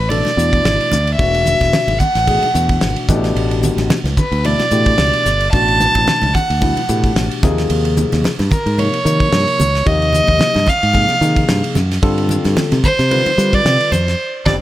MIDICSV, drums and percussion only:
0, 0, Header, 1, 2, 480
1, 0, Start_track
1, 0, Tempo, 541516
1, 1057, Time_signature, 4, 2, 24, 8
1, 12955, End_track
2, 0, Start_track
2, 0, Title_t, "Drums"
2, 91, Note_on_c, 9, 63, 59
2, 101, Note_on_c, 9, 51, 74
2, 179, Note_off_c, 9, 63, 0
2, 189, Note_off_c, 9, 51, 0
2, 220, Note_on_c, 9, 63, 65
2, 235, Note_on_c, 9, 51, 54
2, 236, Note_on_c, 9, 38, 30
2, 309, Note_off_c, 9, 63, 0
2, 323, Note_off_c, 9, 51, 0
2, 325, Note_off_c, 9, 38, 0
2, 342, Note_on_c, 9, 44, 76
2, 430, Note_off_c, 9, 44, 0
2, 469, Note_on_c, 9, 36, 73
2, 472, Note_on_c, 9, 51, 55
2, 557, Note_off_c, 9, 36, 0
2, 561, Note_off_c, 9, 51, 0
2, 578, Note_on_c, 9, 51, 76
2, 580, Note_on_c, 9, 38, 104
2, 666, Note_off_c, 9, 51, 0
2, 668, Note_off_c, 9, 38, 0
2, 714, Note_on_c, 9, 51, 56
2, 803, Note_off_c, 9, 51, 0
2, 811, Note_on_c, 9, 64, 64
2, 816, Note_on_c, 9, 44, 83
2, 818, Note_on_c, 9, 38, 31
2, 900, Note_off_c, 9, 64, 0
2, 905, Note_off_c, 9, 44, 0
2, 907, Note_off_c, 9, 38, 0
2, 951, Note_on_c, 9, 51, 58
2, 1040, Note_off_c, 9, 51, 0
2, 1057, Note_on_c, 9, 36, 98
2, 1057, Note_on_c, 9, 51, 75
2, 1145, Note_off_c, 9, 36, 0
2, 1146, Note_off_c, 9, 51, 0
2, 1191, Note_on_c, 9, 51, 59
2, 1280, Note_off_c, 9, 51, 0
2, 1293, Note_on_c, 9, 63, 53
2, 1293, Note_on_c, 9, 64, 52
2, 1297, Note_on_c, 9, 44, 79
2, 1381, Note_off_c, 9, 63, 0
2, 1381, Note_off_c, 9, 64, 0
2, 1386, Note_off_c, 9, 44, 0
2, 1427, Note_on_c, 9, 63, 61
2, 1428, Note_on_c, 9, 36, 63
2, 1429, Note_on_c, 9, 51, 56
2, 1430, Note_on_c, 9, 38, 30
2, 1515, Note_off_c, 9, 63, 0
2, 1516, Note_off_c, 9, 36, 0
2, 1517, Note_off_c, 9, 51, 0
2, 1519, Note_off_c, 9, 38, 0
2, 1535, Note_on_c, 9, 51, 74
2, 1535, Note_on_c, 9, 64, 62
2, 1537, Note_on_c, 9, 38, 97
2, 1624, Note_off_c, 9, 51, 0
2, 1624, Note_off_c, 9, 64, 0
2, 1625, Note_off_c, 9, 38, 0
2, 1665, Note_on_c, 9, 51, 60
2, 1668, Note_on_c, 9, 63, 67
2, 1753, Note_off_c, 9, 51, 0
2, 1757, Note_off_c, 9, 63, 0
2, 1770, Note_on_c, 9, 44, 79
2, 1774, Note_on_c, 9, 36, 83
2, 1781, Note_on_c, 9, 64, 64
2, 1858, Note_off_c, 9, 44, 0
2, 1863, Note_off_c, 9, 36, 0
2, 1870, Note_off_c, 9, 64, 0
2, 1907, Note_on_c, 9, 51, 60
2, 1909, Note_on_c, 9, 38, 30
2, 1995, Note_off_c, 9, 51, 0
2, 1997, Note_off_c, 9, 38, 0
2, 2016, Note_on_c, 9, 36, 74
2, 2017, Note_on_c, 9, 51, 84
2, 2024, Note_on_c, 9, 63, 54
2, 2105, Note_off_c, 9, 36, 0
2, 2106, Note_off_c, 9, 51, 0
2, 2113, Note_off_c, 9, 63, 0
2, 2149, Note_on_c, 9, 51, 56
2, 2159, Note_on_c, 9, 63, 64
2, 2238, Note_off_c, 9, 51, 0
2, 2247, Note_off_c, 9, 63, 0
2, 2258, Note_on_c, 9, 44, 81
2, 2347, Note_off_c, 9, 44, 0
2, 2385, Note_on_c, 9, 51, 63
2, 2388, Note_on_c, 9, 36, 75
2, 2473, Note_off_c, 9, 51, 0
2, 2477, Note_off_c, 9, 36, 0
2, 2492, Note_on_c, 9, 51, 78
2, 2494, Note_on_c, 9, 38, 97
2, 2581, Note_off_c, 9, 51, 0
2, 2582, Note_off_c, 9, 38, 0
2, 2626, Note_on_c, 9, 51, 63
2, 2715, Note_off_c, 9, 51, 0
2, 2736, Note_on_c, 9, 36, 107
2, 2736, Note_on_c, 9, 44, 84
2, 2738, Note_on_c, 9, 38, 30
2, 2747, Note_on_c, 9, 64, 64
2, 2825, Note_off_c, 9, 36, 0
2, 2825, Note_off_c, 9, 44, 0
2, 2826, Note_off_c, 9, 38, 0
2, 2836, Note_off_c, 9, 64, 0
2, 2871, Note_on_c, 9, 51, 55
2, 2873, Note_on_c, 9, 38, 28
2, 2960, Note_off_c, 9, 51, 0
2, 2962, Note_off_c, 9, 38, 0
2, 2982, Note_on_c, 9, 51, 70
2, 3070, Note_off_c, 9, 51, 0
2, 3112, Note_on_c, 9, 51, 58
2, 3201, Note_off_c, 9, 51, 0
2, 3215, Note_on_c, 9, 44, 76
2, 3222, Note_on_c, 9, 63, 55
2, 3222, Note_on_c, 9, 64, 61
2, 3303, Note_off_c, 9, 44, 0
2, 3311, Note_off_c, 9, 63, 0
2, 3311, Note_off_c, 9, 64, 0
2, 3350, Note_on_c, 9, 51, 53
2, 3352, Note_on_c, 9, 38, 29
2, 3355, Note_on_c, 9, 63, 73
2, 3439, Note_off_c, 9, 51, 0
2, 3440, Note_off_c, 9, 38, 0
2, 3443, Note_off_c, 9, 63, 0
2, 3458, Note_on_c, 9, 51, 77
2, 3460, Note_on_c, 9, 38, 97
2, 3460, Note_on_c, 9, 64, 66
2, 3546, Note_off_c, 9, 51, 0
2, 3548, Note_off_c, 9, 38, 0
2, 3549, Note_off_c, 9, 64, 0
2, 3593, Note_on_c, 9, 51, 56
2, 3595, Note_on_c, 9, 38, 31
2, 3597, Note_on_c, 9, 63, 71
2, 3682, Note_off_c, 9, 51, 0
2, 3684, Note_off_c, 9, 38, 0
2, 3685, Note_off_c, 9, 63, 0
2, 3698, Note_on_c, 9, 44, 76
2, 3699, Note_on_c, 9, 36, 85
2, 3707, Note_on_c, 9, 64, 69
2, 3787, Note_off_c, 9, 44, 0
2, 3788, Note_off_c, 9, 36, 0
2, 3795, Note_off_c, 9, 64, 0
2, 3831, Note_on_c, 9, 51, 53
2, 3919, Note_off_c, 9, 51, 0
2, 3940, Note_on_c, 9, 51, 73
2, 3946, Note_on_c, 9, 63, 63
2, 4029, Note_off_c, 9, 51, 0
2, 4034, Note_off_c, 9, 63, 0
2, 4071, Note_on_c, 9, 51, 53
2, 4072, Note_on_c, 9, 38, 30
2, 4076, Note_on_c, 9, 63, 78
2, 4159, Note_off_c, 9, 51, 0
2, 4161, Note_off_c, 9, 38, 0
2, 4165, Note_off_c, 9, 63, 0
2, 4173, Note_on_c, 9, 44, 75
2, 4261, Note_off_c, 9, 44, 0
2, 4306, Note_on_c, 9, 51, 57
2, 4310, Note_on_c, 9, 36, 81
2, 4395, Note_off_c, 9, 51, 0
2, 4399, Note_off_c, 9, 36, 0
2, 4413, Note_on_c, 9, 51, 79
2, 4415, Note_on_c, 9, 38, 101
2, 4502, Note_off_c, 9, 51, 0
2, 4504, Note_off_c, 9, 38, 0
2, 4550, Note_on_c, 9, 51, 57
2, 4639, Note_off_c, 9, 51, 0
2, 4658, Note_on_c, 9, 44, 84
2, 4660, Note_on_c, 9, 38, 31
2, 4747, Note_off_c, 9, 44, 0
2, 4749, Note_off_c, 9, 38, 0
2, 4791, Note_on_c, 9, 51, 56
2, 4879, Note_off_c, 9, 51, 0
2, 4899, Note_on_c, 9, 51, 70
2, 4902, Note_on_c, 9, 36, 106
2, 4987, Note_off_c, 9, 51, 0
2, 4990, Note_off_c, 9, 36, 0
2, 5036, Note_on_c, 9, 51, 58
2, 5124, Note_off_c, 9, 51, 0
2, 5142, Note_on_c, 9, 44, 79
2, 5145, Note_on_c, 9, 63, 73
2, 5231, Note_off_c, 9, 44, 0
2, 5233, Note_off_c, 9, 63, 0
2, 5275, Note_on_c, 9, 63, 77
2, 5276, Note_on_c, 9, 36, 61
2, 5277, Note_on_c, 9, 51, 57
2, 5363, Note_off_c, 9, 63, 0
2, 5365, Note_off_c, 9, 36, 0
2, 5366, Note_off_c, 9, 51, 0
2, 5384, Note_on_c, 9, 64, 71
2, 5385, Note_on_c, 9, 51, 75
2, 5387, Note_on_c, 9, 38, 100
2, 5472, Note_off_c, 9, 64, 0
2, 5474, Note_off_c, 9, 51, 0
2, 5476, Note_off_c, 9, 38, 0
2, 5510, Note_on_c, 9, 63, 79
2, 5520, Note_on_c, 9, 51, 61
2, 5599, Note_off_c, 9, 63, 0
2, 5609, Note_off_c, 9, 51, 0
2, 5626, Note_on_c, 9, 64, 79
2, 5628, Note_on_c, 9, 36, 86
2, 5634, Note_on_c, 9, 44, 79
2, 5714, Note_off_c, 9, 64, 0
2, 5716, Note_off_c, 9, 36, 0
2, 5723, Note_off_c, 9, 44, 0
2, 5763, Note_on_c, 9, 51, 61
2, 5852, Note_off_c, 9, 51, 0
2, 5864, Note_on_c, 9, 63, 73
2, 5867, Note_on_c, 9, 36, 77
2, 5870, Note_on_c, 9, 51, 80
2, 5953, Note_off_c, 9, 63, 0
2, 5956, Note_off_c, 9, 36, 0
2, 5959, Note_off_c, 9, 51, 0
2, 5998, Note_on_c, 9, 63, 74
2, 6001, Note_on_c, 9, 51, 59
2, 6087, Note_off_c, 9, 63, 0
2, 6090, Note_off_c, 9, 51, 0
2, 6104, Note_on_c, 9, 44, 84
2, 6193, Note_off_c, 9, 44, 0
2, 6238, Note_on_c, 9, 36, 75
2, 6239, Note_on_c, 9, 51, 64
2, 6326, Note_off_c, 9, 36, 0
2, 6327, Note_off_c, 9, 51, 0
2, 6348, Note_on_c, 9, 51, 81
2, 6350, Note_on_c, 9, 38, 100
2, 6437, Note_off_c, 9, 51, 0
2, 6438, Note_off_c, 9, 38, 0
2, 6483, Note_on_c, 9, 51, 63
2, 6571, Note_off_c, 9, 51, 0
2, 6586, Note_on_c, 9, 64, 75
2, 6587, Note_on_c, 9, 36, 100
2, 6589, Note_on_c, 9, 44, 82
2, 6591, Note_on_c, 9, 38, 33
2, 6675, Note_off_c, 9, 36, 0
2, 6675, Note_off_c, 9, 64, 0
2, 6678, Note_off_c, 9, 44, 0
2, 6679, Note_off_c, 9, 38, 0
2, 6721, Note_on_c, 9, 51, 57
2, 6723, Note_on_c, 9, 38, 28
2, 6809, Note_off_c, 9, 51, 0
2, 6811, Note_off_c, 9, 38, 0
2, 6823, Note_on_c, 9, 51, 81
2, 6911, Note_off_c, 9, 51, 0
2, 6958, Note_on_c, 9, 51, 59
2, 7047, Note_off_c, 9, 51, 0
2, 7064, Note_on_c, 9, 44, 80
2, 7068, Note_on_c, 9, 63, 66
2, 7068, Note_on_c, 9, 64, 65
2, 7153, Note_off_c, 9, 44, 0
2, 7157, Note_off_c, 9, 63, 0
2, 7157, Note_off_c, 9, 64, 0
2, 7200, Note_on_c, 9, 63, 75
2, 7203, Note_on_c, 9, 51, 56
2, 7205, Note_on_c, 9, 38, 31
2, 7289, Note_off_c, 9, 63, 0
2, 7292, Note_off_c, 9, 51, 0
2, 7294, Note_off_c, 9, 38, 0
2, 7306, Note_on_c, 9, 64, 67
2, 7314, Note_on_c, 9, 51, 75
2, 7316, Note_on_c, 9, 38, 99
2, 7395, Note_off_c, 9, 64, 0
2, 7403, Note_off_c, 9, 51, 0
2, 7404, Note_off_c, 9, 38, 0
2, 7439, Note_on_c, 9, 63, 75
2, 7443, Note_on_c, 9, 51, 56
2, 7445, Note_on_c, 9, 38, 30
2, 7528, Note_off_c, 9, 63, 0
2, 7532, Note_off_c, 9, 51, 0
2, 7534, Note_off_c, 9, 38, 0
2, 7542, Note_on_c, 9, 64, 70
2, 7548, Note_on_c, 9, 36, 86
2, 7552, Note_on_c, 9, 44, 83
2, 7631, Note_off_c, 9, 64, 0
2, 7637, Note_off_c, 9, 36, 0
2, 7641, Note_off_c, 9, 44, 0
2, 7680, Note_on_c, 9, 51, 55
2, 7769, Note_off_c, 9, 51, 0
2, 7785, Note_on_c, 9, 63, 66
2, 7791, Note_on_c, 9, 51, 71
2, 7874, Note_off_c, 9, 63, 0
2, 7879, Note_off_c, 9, 51, 0
2, 7920, Note_on_c, 9, 51, 56
2, 8009, Note_off_c, 9, 51, 0
2, 8030, Note_on_c, 9, 44, 77
2, 8118, Note_off_c, 9, 44, 0
2, 8157, Note_on_c, 9, 36, 79
2, 8157, Note_on_c, 9, 51, 58
2, 8246, Note_off_c, 9, 36, 0
2, 8246, Note_off_c, 9, 51, 0
2, 8264, Note_on_c, 9, 51, 75
2, 8266, Note_on_c, 9, 38, 103
2, 8353, Note_off_c, 9, 51, 0
2, 8355, Note_off_c, 9, 38, 0
2, 8399, Note_on_c, 9, 51, 56
2, 8488, Note_off_c, 9, 51, 0
2, 8507, Note_on_c, 9, 64, 66
2, 8511, Note_on_c, 9, 44, 86
2, 8595, Note_off_c, 9, 64, 0
2, 8599, Note_off_c, 9, 44, 0
2, 8644, Note_on_c, 9, 51, 55
2, 8645, Note_on_c, 9, 38, 29
2, 8732, Note_off_c, 9, 51, 0
2, 8734, Note_off_c, 9, 38, 0
2, 8745, Note_on_c, 9, 36, 101
2, 8748, Note_on_c, 9, 51, 71
2, 8834, Note_off_c, 9, 36, 0
2, 8836, Note_off_c, 9, 51, 0
2, 8881, Note_on_c, 9, 51, 54
2, 8970, Note_off_c, 9, 51, 0
2, 8977, Note_on_c, 9, 63, 55
2, 8977, Note_on_c, 9, 64, 55
2, 8990, Note_on_c, 9, 44, 80
2, 9066, Note_off_c, 9, 63, 0
2, 9066, Note_off_c, 9, 64, 0
2, 9078, Note_off_c, 9, 44, 0
2, 9108, Note_on_c, 9, 63, 65
2, 9116, Note_on_c, 9, 36, 63
2, 9120, Note_on_c, 9, 51, 55
2, 9196, Note_off_c, 9, 63, 0
2, 9204, Note_off_c, 9, 36, 0
2, 9208, Note_off_c, 9, 51, 0
2, 9212, Note_on_c, 9, 64, 61
2, 9223, Note_on_c, 9, 51, 72
2, 9225, Note_on_c, 9, 38, 95
2, 9300, Note_off_c, 9, 64, 0
2, 9312, Note_off_c, 9, 51, 0
2, 9314, Note_off_c, 9, 38, 0
2, 9346, Note_on_c, 9, 63, 68
2, 9360, Note_on_c, 9, 51, 57
2, 9362, Note_on_c, 9, 38, 32
2, 9434, Note_off_c, 9, 63, 0
2, 9449, Note_off_c, 9, 51, 0
2, 9450, Note_off_c, 9, 38, 0
2, 9454, Note_on_c, 9, 64, 64
2, 9463, Note_on_c, 9, 36, 83
2, 9468, Note_on_c, 9, 44, 81
2, 9543, Note_off_c, 9, 64, 0
2, 9552, Note_off_c, 9, 36, 0
2, 9556, Note_off_c, 9, 44, 0
2, 9599, Note_on_c, 9, 51, 57
2, 9687, Note_off_c, 9, 51, 0
2, 9692, Note_on_c, 9, 63, 58
2, 9702, Note_on_c, 9, 36, 76
2, 9703, Note_on_c, 9, 51, 76
2, 9781, Note_off_c, 9, 63, 0
2, 9791, Note_off_c, 9, 36, 0
2, 9792, Note_off_c, 9, 51, 0
2, 9827, Note_on_c, 9, 63, 64
2, 9838, Note_on_c, 9, 51, 62
2, 9915, Note_off_c, 9, 63, 0
2, 9926, Note_off_c, 9, 51, 0
2, 9944, Note_on_c, 9, 44, 85
2, 10033, Note_off_c, 9, 44, 0
2, 10073, Note_on_c, 9, 36, 79
2, 10076, Note_on_c, 9, 51, 66
2, 10162, Note_off_c, 9, 36, 0
2, 10164, Note_off_c, 9, 51, 0
2, 10180, Note_on_c, 9, 51, 84
2, 10182, Note_on_c, 9, 38, 109
2, 10269, Note_off_c, 9, 51, 0
2, 10270, Note_off_c, 9, 38, 0
2, 10317, Note_on_c, 9, 51, 68
2, 10406, Note_off_c, 9, 51, 0
2, 10418, Note_on_c, 9, 64, 59
2, 10422, Note_on_c, 9, 44, 86
2, 10424, Note_on_c, 9, 38, 32
2, 10506, Note_off_c, 9, 64, 0
2, 10511, Note_off_c, 9, 44, 0
2, 10512, Note_off_c, 9, 38, 0
2, 10561, Note_on_c, 9, 51, 60
2, 10563, Note_on_c, 9, 38, 30
2, 10649, Note_off_c, 9, 51, 0
2, 10651, Note_off_c, 9, 38, 0
2, 10661, Note_on_c, 9, 36, 104
2, 10662, Note_on_c, 9, 51, 79
2, 10750, Note_off_c, 9, 36, 0
2, 10751, Note_off_c, 9, 51, 0
2, 10794, Note_on_c, 9, 51, 64
2, 10882, Note_off_c, 9, 51, 0
2, 10894, Note_on_c, 9, 63, 56
2, 10894, Note_on_c, 9, 64, 55
2, 10906, Note_on_c, 9, 44, 81
2, 10982, Note_off_c, 9, 63, 0
2, 10982, Note_off_c, 9, 64, 0
2, 10995, Note_off_c, 9, 44, 0
2, 11032, Note_on_c, 9, 63, 63
2, 11036, Note_on_c, 9, 51, 61
2, 11038, Note_on_c, 9, 38, 29
2, 11120, Note_off_c, 9, 63, 0
2, 11125, Note_off_c, 9, 51, 0
2, 11127, Note_off_c, 9, 38, 0
2, 11138, Note_on_c, 9, 64, 64
2, 11139, Note_on_c, 9, 51, 77
2, 11140, Note_on_c, 9, 38, 97
2, 11227, Note_off_c, 9, 51, 0
2, 11227, Note_off_c, 9, 64, 0
2, 11229, Note_off_c, 9, 38, 0
2, 11273, Note_on_c, 9, 51, 65
2, 11274, Note_on_c, 9, 38, 33
2, 11274, Note_on_c, 9, 63, 68
2, 11361, Note_off_c, 9, 51, 0
2, 11363, Note_off_c, 9, 38, 0
2, 11363, Note_off_c, 9, 63, 0
2, 11380, Note_on_c, 9, 36, 86
2, 11382, Note_on_c, 9, 44, 78
2, 11384, Note_on_c, 9, 64, 65
2, 11468, Note_off_c, 9, 36, 0
2, 11471, Note_off_c, 9, 44, 0
2, 11472, Note_off_c, 9, 64, 0
2, 11514, Note_on_c, 9, 51, 61
2, 11515, Note_on_c, 9, 38, 31
2, 11602, Note_off_c, 9, 51, 0
2, 11604, Note_off_c, 9, 38, 0
2, 11623, Note_on_c, 9, 51, 82
2, 11623, Note_on_c, 9, 63, 59
2, 11711, Note_off_c, 9, 51, 0
2, 11712, Note_off_c, 9, 63, 0
2, 11755, Note_on_c, 9, 51, 57
2, 11756, Note_on_c, 9, 63, 70
2, 11844, Note_off_c, 9, 51, 0
2, 11845, Note_off_c, 9, 63, 0
2, 11863, Note_on_c, 9, 44, 80
2, 11952, Note_off_c, 9, 44, 0
2, 11994, Note_on_c, 9, 36, 80
2, 12000, Note_on_c, 9, 51, 59
2, 12083, Note_off_c, 9, 36, 0
2, 12088, Note_off_c, 9, 51, 0
2, 12106, Note_on_c, 9, 51, 73
2, 12107, Note_on_c, 9, 38, 100
2, 12194, Note_off_c, 9, 51, 0
2, 12196, Note_off_c, 9, 38, 0
2, 12237, Note_on_c, 9, 51, 64
2, 12325, Note_off_c, 9, 51, 0
2, 12340, Note_on_c, 9, 64, 69
2, 12346, Note_on_c, 9, 44, 88
2, 12429, Note_off_c, 9, 64, 0
2, 12435, Note_off_c, 9, 44, 0
2, 12481, Note_on_c, 9, 51, 54
2, 12483, Note_on_c, 9, 38, 31
2, 12570, Note_off_c, 9, 51, 0
2, 12571, Note_off_c, 9, 38, 0
2, 12820, Note_on_c, 9, 36, 89
2, 12820, Note_on_c, 9, 64, 89
2, 12826, Note_on_c, 9, 38, 84
2, 12909, Note_off_c, 9, 36, 0
2, 12909, Note_off_c, 9, 64, 0
2, 12914, Note_off_c, 9, 38, 0
2, 12955, End_track
0, 0, End_of_file